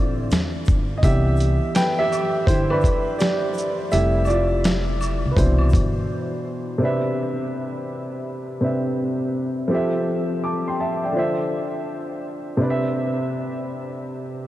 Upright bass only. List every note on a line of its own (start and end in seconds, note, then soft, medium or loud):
0.00 0.27 A1 medium
0.31 0.63 E2 medium
0.68 1.00 G1 medium
1.03 1.57 C2 loud
2.47 2.80 G1 medium
3.93 5.21 F1 loud
5.25 5.36 C2 medium
5.37 5.69 C2 loud
5.74 6.06 G1 medium